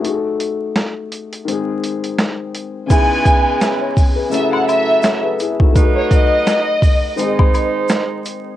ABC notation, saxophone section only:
X:1
M:4/4
L:1/8
Q:"Swing 16ths" 1/4=84
K:C#m
V:1 name="Saxophone section"
z8 | [G,EB]3 z [F,EA]3 z | [F,DB]3 z [G,D^B]3 z |]